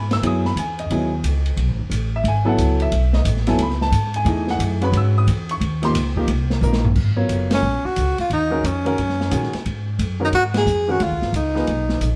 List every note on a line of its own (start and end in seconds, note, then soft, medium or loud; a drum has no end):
0.00 0.21 G#2 medium
0.00 0.13 B5 medium
0.11 0.23 E6 loud
0.11 snare medium
0.11 ride soft
0.22 0.55 F#2 medium
0.22 0.42 F#3 medium
0.22 0.42 B3 medium
0.22 0.43 E4 medium
0.22 0.43 G#4 medium
0.22 ride medium
0.27 0.46 D#6 medium
0.45 0.57 B5 loud
0.45 snare soft
0.55 0.89 E2 medium
0.55 0.79 G#5 medium
0.55 hi-hat pedal medium
0.55 ride medium
0.79 1.54 D#5 medium
0.79 ride soft
0.90 1.23 D#2 medium
0.90 1.10 F#3 medium
0.90 1.10 B3 medium
0.90 1.10 E4 medium
0.90 1.11 G#4 medium
0.90 ride medium
1.23 1.56 C#2 medium
1.23 hi-hat pedal medium
1.23 ride medium
1.46 ride medium
1.56 1.68 B1 medium
1.56 ride medium
1.68 1.79 A1 medium
1.79 1.89 F#1 medium
1.90 2.23 A1 medium
1.90 hi-hat pedal medium
1.90 ride medium
2.16 2.26 E5 medium
2.23 2.57 G#1 medium
2.23 ride medium
2.28 2.48 G#5 medium
2.45 2.89 F#3 medium
2.45 2.89 B3 medium
2.45 2.89 E4 medium
2.45 2.90 A4 medium
2.49 2.79 F#5 medium
2.57 2.90 C#2 medium
2.57 hi-hat pedal medium
2.57 ride medium
2.80 3.12 E5 medium
2.80 ride medium
2.92 3.24 B1 medium
2.92 ride medium
3.13 3.26 D#5 medium
3.13 snare medium
3.25 3.57 A1 loud
3.25 hi-hat pedal medium
3.25 ride medium
3.37 snare soft
3.47 3.58 F#3 medium
3.47 3.58 B3 medium
3.47 3.58 E4 medium
3.47 3.59 A4 medium
3.47 3.60 G#5 medium
3.47 snare soft
3.47 ride medium
3.58 3.91 C#2 medium
3.58 ride medium
3.62 3.82 B5 medium
3.70 snare soft
3.81 4.13 A5 medium
3.81 snare medium
3.91 4.24 G#2 medium
3.91 hi-hat pedal medium
3.91 ride medium
4.14 4.47 G#5 loud
4.14 ride medium
4.25 4.58 E2 medium
4.25 4.77 E3 medium
4.25 4.77 A3 medium
4.25 4.77 D#4 medium
4.25 4.78 G#4 medium
4.25 ride medium
4.48 4.61 F#5 medium
4.48 snare medium
4.59 4.91 F#2 loud
4.59 hi-hat pedal medium
4.59 ride medium
4.81 5.25 G#3 medium
4.81 5.25 C#4 medium
4.81 5.25 F#4 medium
4.81 5.26 B4 medium
4.81 4.95 B5 loud
4.81 ride medium
4.92 5.25 G#2 medium
4.92 ride medium
4.97 5.17 E6 loud
5.18 5.48 D#6 loud
5.27 5.60 E2 loud
5.27 hi-hat pedal medium
5.27 ride medium
5.49 5.81 C#6 loud
5.49 ride medium
5.60 5.93 D#2 medium
5.60 ride medium
5.82 5.93 F3 medium
5.82 5.94 A#3 medium
5.82 5.94 D#4 medium
5.82 5.94 G4 medium
5.82 5.91 C6 loud
5.82 snare soft
5.82 ride medium
5.94 6.27 C#2 medium
5.94 hi-hat pedal medium
5.94 ride medium
6.16 6.27 F3 medium
6.16 6.27 A#3 medium
6.16 6.27 D#4 medium
6.16 6.28 G4 medium
6.16 kick medium
6.27 6.61 C2 medium
6.27 ride medium
6.50 snare medium
6.61 6.94 A#1 loud
6.61 6.82 F3 medium
6.61 6.82 A#3 medium
6.61 6.82 D#4 medium
6.61 6.82 A#4 medium
6.61 hi-hat pedal medium
6.73 snare medium
6.85 floor tom loud
6.95 7.28 G#1 medium
6.95 kick medium
6.95 crash medium
7.16 7.60 F#3 medium
7.16 7.60 B3 medium
7.16 7.60 F4 medium
7.16 7.60 A#4 medium
7.16 7.60 C#5 medium
7.29 7.61 F#1 medium
7.29 hi-hat pedal medium
7.29 ride medium
7.51 7.88 C#4 medium
7.51 snare medium
7.51 ride medium
7.62 7.83 A#1 medium
7.84 8.19 F#4 loud
7.84 muted upright bass stroke soft
7.96 8.17 C#2 medium
7.96 hi-hat pedal medium
7.96 ride medium
8.18 8.31 F4 medium
8.18 muted upright bass stroke soft
8.18 ride soft
8.30 8.63 D#2 medium
8.30 8.67 D#4 medium
8.30 ride medium
8.50 8.62 D#3 medium
8.50 8.62 G#3 medium
8.50 8.62 C#4 medium
8.50 8.62 F#4 medium
8.50 8.63 A#4 medium
8.63 8.96 F2 medium
8.63 9.54 C#4 medium
8.63 hi-hat pedal medium
8.63 ride medium
8.85 8.96 D#3 medium
8.85 8.96 G#3 medium
8.85 8.97 C#4 medium
8.85 8.97 F#4 medium
8.85 8.97 A#4 medium
8.85 ride soft
8.98 9.31 F#2 medium
8.98 ride medium
9.10 snare soft
9.21 snare soft
9.30 9.51 A#2 medium
9.30 9.50 D#3 medium
9.30 9.51 G#3 medium
9.30 9.51 C#4 medium
9.30 9.51 F#4 medium
9.30 9.51 G#4 medium
9.30 hi-hat pedal medium
9.30 ride medium
9.43 snare soft
9.53 muted upright bass stroke soft
9.53 snare soft
9.53 ride soft
9.65 9.98 G#2 medium
9.65 ride medium
9.99 10.31 F#2 medium
9.99 hi-hat pedal medium
9.99 ride medium
10.20 10.31 D#3 medium
10.20 10.31 G#3 medium
10.20 10.31 C#4 medium
10.20 10.31 F#4 medium
10.20 10.32 A#4 medium
10.25 10.29 D#4 medium
10.32 10.65 G#2 medium
10.32 10.44 F#4 loud
10.32 ride medium
10.54 10.93 G#4 loud
10.54 snare medium
10.54 ride medium
10.66 10.99 F2 medium
10.66 hi-hat pedal medium
10.88 10.99 D#3 medium
10.88 10.99 G#3 medium
10.88 10.99 C#4 medium
10.88 10.99 F#4 medium
10.88 11.05 F#4 medium
10.88 10.99 A#4 medium
11.00 11.13 D#2 medium
11.00 11.35 F4 medium
11.00 ride medium
11.11 11.21 C#2 medium
11.22 11.32 G#1 medium
11.22 snare soft
11.32 11.66 C#2 medium
11.32 12.16 D#4 medium
11.32 hi-hat pedal medium
11.32 ride medium
11.55 11.66 F3 medium
11.55 11.66 A#3 medium
11.55 11.66 D#4 medium
11.55 11.66 G#4 medium
11.55 11.67 B4 medium
11.55 snare soft
11.67 12.00 B1 medium
11.67 ride medium
11.89 snare medium
12.01 12.16 A#1 medium
12.01 hi-hat pedal medium
12.01 ride medium